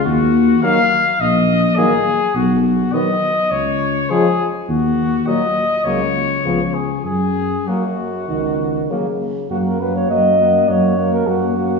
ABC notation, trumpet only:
X:1
M:4/4
L:1/8
Q:1/4=103
K:F#
V:1 name="Trumpet"
F2 e2 d2 G2 | F2 d2 c2 G z | F2 d2 c3 G | G2 F4 z2 |
f f f f f f f f |]